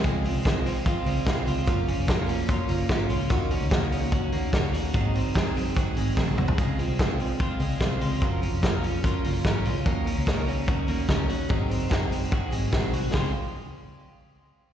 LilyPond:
<<
  \new Staff \with { instrumentName = "Clean electric guitar" } { \time 4/4 \key des \major \tempo 4 = 146 aes8 c'8 aes8 c'8 f'8 aes8 c'8 f'8 | f8 des'8 bes8 des'8 f'8 bes8 des'8 f'8 | ees8 des'8 bes8 des'8 ges'8 bes8 des'8 ges'8 | ees8 c'8 aes8 c'8 ges'8 aes8 c'8 ges'8 |
aes8 c'8 aes8 c'8 f'8 aes8 c'8 f'8 | f8 des'8 bes8 des'8 f'8 bes8 des'8 f'8 | bes8 des'8 bes8 des'8 ges'8 bes8 des'8 ges'8 | ees8 c'8 aes8 c'8 ges'8 aes8 c'8 ges'8 |
<aes c' f'>8 r2. r8 | }
  \new Staff \with { instrumentName = "Steel-string acoustic guitar" } { \time 4/4 \key des \major <des f aes c' f'>8 <aes c' f'>8 <des f aes c' f'>8 <aes c' f'>8 <f aes c' f'>8 <aes c' f'>8 <des f aes c' f'>8 <aes c' f'>8 | <ges bes des' f'>8 <bes des' f'>8 <ges bes des' f'>8 <bes des' f'>8 <ges bes des' f'>8 <bes des' f'>8 <ges bes des' f'>8 <bes des' f'>8 | <ees bes des' ges'>8 <bes des' ges'>8 <ees bes des' ges'>8 <bes des' ges'>8 <ees bes des' ges'>8 <bes des' ges'>8 <ees bes des' ges'>8 <bes des' ges'>8 | <aes, ees ges aes c' aes'>8 <ges aes c' aes'>8 <aes, ees ges aes c' aes'>8 <ges aes c' aes'>8 <ges aes c' aes'>8 <ges aes c' aes'>8 <aes, ees ges aes c' aes'>8 <ges aes c' aes'>8 |
<des aes c' f' aes'>8 <c' f' aes'>8 <des aes c' f' aes'>8 <c' f' aes'>8 <aes c' f' aes'>8 <c' f' aes'>8 <des aes c' f' aes'>8 <c' f' aes'>8 | <ges des' f' bes'>8 <des' f' bes'>8 <ges des' f' bes'>8 <des' f' bes'>8 <ges des' f' bes'>8 <des' f' bes'>8 <ges des' f' bes'>8 <des' f' bes'>8 | <ees ges des' ees' bes'>8 <des' ees' bes'>8 <ees ges des' ees' bes'>8 <des' ees' bes'>8 <ges des' ees' bes'>8 <des' ees' bes'>8 <ees ges des' ees' bes'>8 <des' ees' bes'>8 | <aes, ees ges aes c' aes'>8 <ges aes c' aes'>8 <aes, ees ges aes c' aes'>8 <ges aes c' aes'>8 <ges aes c' aes'>8 <ges aes c' aes'>8 <aes, ees ges aes c' aes'>8 <ges aes c' aes'>8 |
<des f aes c' aes'>8 r2. r8 | }
  \new Staff \with { instrumentName = "Picked electric bass" } { \clef bass \time 4/4 \key des \major des,8. c,4.~ c,16 des,8 c,8 des,8 | ges,,8. f,,4.~ f,,16 ges,,8 aes,,8 des,8 | ees,8. des,4.~ des,16 ees,8 des,8 ees,8 | aes,,8. ges,,4.~ ges,,16 aes,,8 bes,,8 c,8 |
des,8. c,4.~ c,16 des,8 c,8 des,8 | ges,,8. f,,4.~ f,,16 ges,,8 aes,,8 des,8 | ees,8. des,4.~ des,16 ees,8 des,8 ees,8 | aes,,8. ges,,4.~ ges,,16 aes,,8 bes,,8 c,8 |
des,8 r2. r8 | }
  \new DrumStaff \with { instrumentName = "Drums" } \drummode { \time 4/4 <hh bd>8 hho8 <hh bd sn>8 hho8 <hh bd>8 hho8 <hh bd sn>8 hho8 | <hh bd>8 hho8 <hh bd sn>8 hho8 <hh bd>8 hho8 <hh bd sn>8 hho8 | <hh bd>8 hho8 <hh bd sn>8 hho8 <hh bd>8 hho8 <hh bd sn>8 hho8 | <hh bd>8 hho8 <hh bd sn>8 hho8 <hh bd>8 hho8 <bd sn>16 tommh16 toml16 tomfh16 |
<hh bd>8 hho8 <hh bd sn>8 hho8 <hh bd>8 hho8 <hh bd sn>8 hho8 | <hh bd>8 hho8 <hh bd sn>8 hho8 <hh bd>8 hho8 <hh bd sn>8 hho8 | <hh bd>8 hho8 <hh bd sn>8 hho8 <hh bd>8 hho8 <hh bd sn>8 hho8 | <hh bd>8 hho8 <hh bd sn>8 hho8 <hh bd>8 hho8 <hh bd sn>8 hho8 |
<bd sn>4 r4 r4 r4 | }
>>